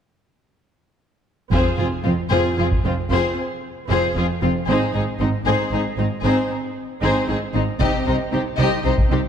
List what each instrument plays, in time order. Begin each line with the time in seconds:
1.52 double bass section F1, cello section F2, viola section C4 F4, violin section G#4 C5, taiko
1.78 double bass section F1, cello section F2, viola section C4 F4, violin section F4 G#4
2.05 double bass section F1, cello section F2, viola section C4 F4, violin section C4 F4
2.31 double bass section F1, cello section F2, viola section C4 F4, violin section G#4 C5
2.58 double bass section F1, cello section F2, viola section C4 F4, violin section F4 G#4
2.71 taiko
2.84 double bass section F1, cello section F2, viola section C4 F4, violin section C4 F4
3.11 double bass section F1, cello section F2, viola section C4 F4, violin section G#4 C5
3.89 double bass section F1, cello section F2, viola section C4 F4, violin section G#4 C5
4.15 double bass section F1, cello section F2, viola section C4 F4, violin section F4 G#4
4.42 double bass section F1, cello section F2, viola section C4 F4, violin section C4 F4
4.68 double bass section G#1, cello section G#2, viola section C4 D#4, violin section G#4 C5
4.94 double bass section G#1, cello section G#2, viola section C4 D#4, violin section D#4 G#4
5.20 double bass section G#1, cello section G#2, violin section C4 D#4, viola section C4 D#4
5.45 double bass section G#1, cello section G#2, viola section C4 D#4, violin section G#4 C5
5.71 double bass section G#1, cello section G#2, viola section C4 D#4, violin section D#4 G#4
5.97 double bass section G#1, cello section G#2, viola section C4 D#4, violin section C4 D#4
6.24 double bass section G#1, cello section G#2, viola section C4 D#4, violin section G#4 C5
7.02 double bass section G#1, cello section G#2, viola section C4 D#4, violin section G#4 C5
7.28 double bass section G#1, cello section G#2, viola section C4 D#4, violin section D#4 G#4
7.54 double bass section G#1, cello section G#2, violin section C4 D#4, viola section C4 D#4
7.80 double bass section C2, cello section C3, viola section C4 D#4, violin section G4 D#5, taiko
8.07 double bass section C2, cello section C3, viola section C4 D#4, violin section D#4 C5
8.32 double bass section C2, cello section C3, viola section C4 D#4, violin section C4 G4
8.58 double bass section C2, cello section C3, viola section C4 D#4, violin section G4 D#5
8.84 double bass section C2, cello section C3, viola section C4 D#4, violin section D#4 C5
8.98 taiko
9.10 double bass section C2, cello section C3, viola section C4 D#4, violin section C4 G4